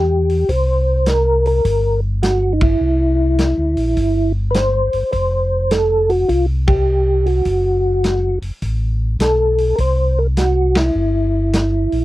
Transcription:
Already playing: tonewheel organ E2 G4
0.29 open hi-hat
0.49 tonewheel organ C2 C5, kick, open hi-hat
1.06 tonewheel organ A#4, snare, closed hi-hat
1.46 tonewheel organ A#4, open hi-hat
1.65 tonewheel organ G1, kick, open hi-hat
2.23 tonewheel organ F#4, snare, closed hi-hat
2.53 tonewheel organ D#4
2.61 tonewheel organ E4, kick, ride
2.81 tonewheel organ C2
3.38 snare, closed hi-hat
3.58 tonewheel organ D2
3.77 tonewheel organ A#1, open hi-hat
3.97 tonewheel organ G1, kick, open hi-hat
4.51 tonewheel organ B4, snare, closed hi-hat
4.55 tonewheel organ C5
4.93 tonewheel organ G1, open hi-hat
5.12 tonewheel organ F1 C5, kick, open hi-hat
5.71 tonewheel organ A4, snare, closed hi-hat
6.09 tonewheel organ F#4, open hi-hat
6.28 tonewheel organ C2 F4, kick, open hi-hat
6.67 tonewheel organ G4, kick, ride
7.26 tonewheel organ F#4, open hi-hat
7.45 tonewheel organ F#1, kick, open hi-hat
8.04 snare, closed hi-hat
8.42 tonewheel organ F#1, open hi-hat
8.62 tonewheel organ A1, kick, open hi-hat
9.19 tonewheel organ B1 A4, snare, closed hi-hat
9.58 open hi-hat
9.76 tonewheel organ C2 A#4, kick, open hi-hat
9.80 tonewheel organ C5
10.19 tonewheel organ A#4
10.37 tonewheel organ F#4, snare, closed hi-hat
10.75 tonewheel organ E4, snare, ride
10.95 tonewheel organ G1
11.53 snare, closed hi-hat
11.92 tonewheel organ A#1, open hi-hat

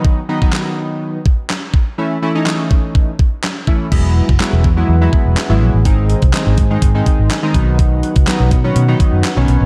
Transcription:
Already playing: synth keys D#3 F#3 B3 D#4
0.05 kick
0.29 synth keys D#3 F#3 B3 D#4
0.42 synth keys D#3 F#3 D#4, kick
0.53 snare, clap
1.26 kick
1.50 snare, clap
1.74 kick
1.98 synth keys E3 A3 C#4 E4
2.22 synth keys E3 A3 C#4 E4
2.35 synth keys E3 A3 C#4 D#4
2.46 snare, clap
2.71 kick
2.95 kick
3.19 kick
3.44 snare, clap
3.67 synth keys E3 A3 C#4 E4, kick
3.91 fingered electric bass E1, synth keys F#3 G#3 B3 E4, analog synth pad E4 G#4 B4 F#5, kick, crash
4.29 fingered electric bass F#1, kick
4.40 synth keys F#3 G#3 B3 E4, snare, clap
4.53 fingered electric bass E1
4.64 fingered electric bass E2, kick
4.77 synth keys F#3 G#3 B3 E4
4.88 fingered electric bass E2
5.01 synth keys F#3 G#3 B3 E4
5.13 kick
5.26 fingered electric bass E1
5.37 snare, clap
5.50 fingered electric bass G#1, synth keys F#3 G#3 B3 E4
5.61 fingered electric bass A#1
5.74 fingered electric bass A1
5.85 fingered electric bass G#1, synth keys D#3 G#3 C4 D#4, analog synth pad D#4 C5 G#5, kick, closed hi-hat
6.10 closed hi-hat
6.22 fingered electric bass C2, kick, closed hi-hat
6.33 synth keys D#3 G#3 C4 D#4, snare, clap, closed hi-hat
6.46 fingered electric bass G#1
6.58 fingered electric bass G#2, kick, closed hi-hat
6.70 synth keys D#3 G#3 C4 D#4
6.82 fingered electric bass G#2, kick, closed hi-hat
6.95 synth keys D#3 G#3 C4 D#4
7.06 kick, closed hi-hat
7.19 fingered electric bass G#1
7.30 snare, clap, closed hi-hat
7.43 synth keys D#3 G#3 C4 D#4
7.54 fingered electric bass B1, synth keys D#3 F#3 B3 D#4, analog synth pad F#4 B4 F#5, kick, closed hi-hat
7.79 kick, closed hi-hat
8.03 closed hi-hat
8.16 fingered electric bass C#2, kick, closed hi-hat
8.27 synth keys D#3 F#3 B3 D#4, snare, clap, closed hi-hat
8.40 fingered electric bass B1
8.51 fingered electric bass B2, kick, closed hi-hat
8.64 synth keys D#3 F#3 B3 C#4
8.76 fingered electric bass B2, closed hi-hat
8.88 synth keys D#3 F#3 B3 D#4
9.00 kick, closed hi-hat
9.13 fingered electric bass F#2
9.24 snare, clap, closed hi-hat
9.36 fingered electric bass B1, synth keys D#3 F#3 B3 C#4
9.48 fingered electric bass B1, closed hi-hat
9.61 fingered electric bass A#1

